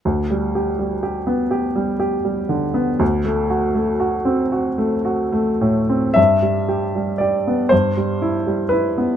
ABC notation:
X:1
M:6/8
L:1/16
Q:3/8=40
K:G
V:1 name="Upright piano"
z12 | z12 | e4 d2 c4 B2 |]
V:2 name="Upright piano"
D,, G, G G, G B, G G, G G, D, B, | D,, A, F A, F C F A, F A, A,, C | G,, G, G G, G B, G,, G, E G, E B, |]